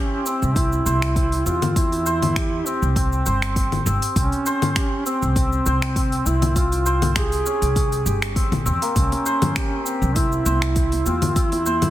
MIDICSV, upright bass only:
0, 0, Header, 1, 2, 480
1, 0, Start_track
1, 0, Tempo, 600000
1, 1409, Time_signature, 4, 2, 24, 8
1, 9521, End_track
2, 0, Start_track
2, 0, Title_t, "Upright bass"
2, 0, Program_c, 0, 32
2, 338, Note_on_c, 0, 36, 85
2, 636, Note_off_c, 0, 36, 0
2, 687, Note_on_c, 0, 36, 82
2, 1115, Note_off_c, 0, 36, 0
2, 1168, Note_on_c, 0, 40, 84
2, 2075, Note_off_c, 0, 40, 0
2, 2258, Note_on_c, 0, 36, 86
2, 2556, Note_off_c, 0, 36, 0
2, 2609, Note_on_c, 0, 31, 90
2, 3036, Note_off_c, 0, 31, 0
2, 3088, Note_on_c, 0, 31, 101
2, 3178, Note_off_c, 0, 31, 0
2, 3327, Note_on_c, 0, 36, 95
2, 3418, Note_off_c, 0, 36, 0
2, 4178, Note_on_c, 0, 36, 81
2, 4476, Note_off_c, 0, 36, 0
2, 4529, Note_on_c, 0, 36, 85
2, 4955, Note_off_c, 0, 36, 0
2, 5008, Note_on_c, 0, 36, 85
2, 5915, Note_off_c, 0, 36, 0
2, 6094, Note_on_c, 0, 36, 85
2, 6394, Note_off_c, 0, 36, 0
2, 6446, Note_on_c, 0, 31, 84
2, 6809, Note_off_c, 0, 31, 0
2, 6814, Note_on_c, 0, 34, 93
2, 6927, Note_on_c, 0, 40, 88
2, 6939, Note_off_c, 0, 34, 0
2, 7018, Note_off_c, 0, 40, 0
2, 7168, Note_on_c, 0, 36, 94
2, 7259, Note_off_c, 0, 36, 0
2, 8013, Note_on_c, 0, 36, 84
2, 8313, Note_off_c, 0, 36, 0
2, 8367, Note_on_c, 0, 36, 89
2, 8794, Note_off_c, 0, 36, 0
2, 8848, Note_on_c, 0, 40, 82
2, 9521, Note_off_c, 0, 40, 0
2, 9521, End_track
0, 0, End_of_file